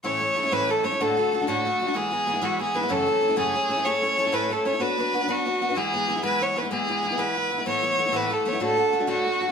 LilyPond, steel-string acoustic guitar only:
\new Staff \with { instrumentName = "Steel-string acoustic guitar" } { \time 12/8 \key a \major \tempo 4. = 126 <a, e a cis' e'>8 <e a cis' e'>8 <e a cis' e'>16 <a cis' e'>16 <a, e a cis' e'>8 <e a cis' e'>8 <e a cis' e'>16 <a cis' e'>16 <d, a, d a d' fis'>8 <d a d' fis'>8 <d a d' fis'>16 <d a d' fis'>16 <d, a, d a d' fis'>8 <d a d' fis'>8 <d a d' fis'>16 <d a d' fis'>16 | <e gis b e'>8 <e gis b e'>8 <e gis b e'>16 <gis b e'>16 <e gis b e'>8 <e gis b e'>8 <e gis b e'>16 <gis b e'>16 <fis, cis e a cis' e'>8 <e a cis' e'>8 <e a cis' e'>16 <e a cis' e'>16 <fis, cis e a cis' e'>8 <e a cis' e'>8 <e a cis' e'>16 <e a cis' e'>16 | <a, a cis' e' a'>8 <a cis' e' a'>8 <a cis' e' a'>16 <cis' e' a'>16 <a, a cis' e' a'>8 <a cis' e' a'>8 <a cis' e' a'>16 <cis' e' a'>16 <b d' fis' b'>8 <b d' fis' b'>8 <b d' fis' b'>16 <d' fis' b'>16 <b d' fis' b'>8 <b d' fis' b'>8 <b d' fis' b'>16 <d' fis' b'>16 | <e gis b e'>8 <e gis b e'>8 <e gis b e'>16 <gis b e'>16 <e gis b e'>8 <e gis b e'>8 <e gis b e'>16 <gis b e'>16 <e gis b e'>8 <e gis b e'>8 <e gis b e'>16 <gis b e'>16 <e gis b e'>8 <e gis b e'>8 <e gis b e'>16 <gis b e'>16 |
<a, e a b e'>8 <e a b e'>8 <e a b e'>16 <a b e'>16 <a, e a b e'>8 <e a b e'>8 <e a b e'>16 <a b e'>16 <d, a, d a d' fis'>8 <d a d' fis'>8 <d a d' fis'>16 <d a d' fis'>16 <d, a, d a d' fis'>8 <d a d' fis'>8 <d a d' fis'>16 fis'16 | }